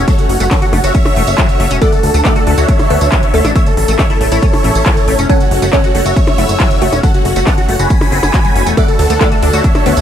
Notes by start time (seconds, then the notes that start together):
Already playing: A3 C#4 F#4
0.08 F#3 A4 C#5, kick, closed hi-hat, tambourine
0.19 F#4, closed hi-hat, tambourine
0.29 F#1 F#4, open hi-hat
0.40 F#1 A3 F#4, closed hi-hat, tambourine
0.51 C#4 A4 C#5, kick, clap, closed hi-hat, tambourine, percussion blips
0.62 F#4, closed hi-hat, tambourine
0.73 F#1 A3 F#4, open hi-hat, percussion blips
0.84 F#1 F#4 C#5 E5, closed hi-hat, tambourine
0.95 C#4, kick, closed hi-hat, tambourine
1.06 open hi-hat, tambourine, percussion blips
1.16 E1 A3, open hi-hat
1.27 F#1, closed hi-hat, tambourine
1.38 F#3, kick, clap, closed hi-hat, tambourine
1.49 closed hi-hat, tambourine
1.60 F#1 A3, open hi-hat
1.71 E1 C#4, closed hi-hat, tambourine
1.81 D3 F#3 A3 D4 A4 D5 F#5, kick, closed hi-hat, tambourine
1.92 A4, closed hi-hat, tambourine
2.03 D2 A4, open hi-hat
2.14 D2 A3 A4, closed hi-hat, tambourine
2.25 A3 D4 A4 D5 F#5, kick, clap, closed hi-hat, tambourine
2.36 F#4 A4, closed hi-hat, tambourine
2.47 D2 A3 A4, open hi-hat
2.58 D2 F#4 C#5 E5, closed hi-hat, tambourine
2.69 D4, kick, closed hi-hat, tambourine
2.79 closed hi-hat, tambourine, percussion blips
2.90 D2 A3 B3 B4, open hi-hat
3.01 D2, closed hi-hat, tambourine
3.12 F#3, kick, clap, closed hi-hat, tambourine
3.23 closed hi-hat, tambourine
3.34 D2 A3 A4, open hi-hat
3.45 A1 D4, closed hi-hat, tambourine, percussion blips
3.56 E3 A3 C#4 E4 C#5 E5, kick, closed hi-hat, tambourine
3.66 A4, closed hi-hat, tambourine
3.77 A1 A4, open hi-hat
3.88 A1 A3 A4, closed hi-hat, tambourine
3.99 C#4 C#5 E5, kick, clap, closed hi-hat, tambourine, percussion blips
4.10 E4 A4, closed hi-hat, tambourine
4.21 A1 A3 A4, open hi-hat
4.32 A1 E4 A4 C#5, closed hi-hat, tambourine
4.43 C#4, kick, closed hi-hat, tambourine
4.53 open hi-hat, tambourine, percussion blips
4.64 A1 A3, open hi-hat
4.75 A1, closed hi-hat, tambourine
4.86 E3, kick, clap, closed hi-hat, tambourine
4.97 closed hi-hat, tambourine
5.08 A1 A3, open hi-hat
5.19 E1 C#4, closed hi-hat, tambourine
5.29 F#3 C#4 F#4 A4 C#5 F#5, kick, closed hi-hat, tambourine
5.40 F#4, closed hi-hat, tambourine
5.51 F#1 F#4, open hi-hat
5.62 F#1 A3 F#4, closed hi-hat, tambourine
5.73 C#4 A4 C#5 F#5, kick, clap, closed hi-hat
5.84 F#4, closed hi-hat, tambourine
5.95 F#1 A3 F#4, open hi-hat
6.06 F#1 F#4 C#5 E5, closed hi-hat, tambourine
6.16 C#4, kick, closed hi-hat, tambourine
6.27 closed hi-hat, tambourine, percussion blips
6.38 F#1 A3 E4 E5, open hi-hat
6.49 F#1, closed hi-hat, tambourine
6.60 F#3, kick, clap, closed hi-hat, tambourine
6.71 closed hi-hat, tambourine
6.82 F#1 A3 F#4 F#5, open hi-hat
6.93 E1 C#4, closed hi-hat, tambourine, percussion blips
7.03 F#3 A4 F#5, kick, closed hi-hat, tambourine
7.14 F#4, closed hi-hat, tambourine
7.25 F#1 F#4, open hi-hat
7.36 F#1 A3 F#4, closed hi-hat, tambourine
7.47 C#4 F#5 A5, kick, clap, closed hi-hat, tambourine, percussion blips
7.58 F#4, closed hi-hat, tambourine
7.69 F#1 A3 F#4, open hi-hat
7.79 F#1 F#4 G#5 B5, closed hi-hat, tambourine
7.90 C#4, kick, closed hi-hat, tambourine
8.01 open hi-hat, tambourine, percussion blips
8.12 F#1 C4, open hi-hat
8.23 F#1, closed hi-hat, tambourine, percussion blips
8.34 F#4, kick, clap, closed hi-hat, tambourine
8.45 F#3, closed hi-hat, tambourine
8.56 F#1 C#4, open hi-hat
8.66 E1 A3, closed hi-hat, tambourine
8.77 D3 F#3 A3 D4 A4 D5 F#5, kick, closed hi-hat, tambourine
8.88 A4, closed hi-hat, tambourine
8.99 D2 A4, open hi-hat, ride
9.10 D2 A3 A4, closed hi-hat, tambourine
9.21 A3 D4 A4 D5 F#5, kick, clap, closed hi-hat, tambourine
9.32 F#4 A4, closed hi-hat, tambourine
9.43 D2 D4 A4, open hi-hat, ride
9.53 D2 F#4 C#5 E5, closed hi-hat, tambourine
9.64 D4, kick, closed hi-hat, tambourine
9.75 closed hi-hat, tambourine, percussion blips
9.86 D2 A3 B3 B4, open hi-hat, ride
9.97 D2, closed hi-hat, tambourine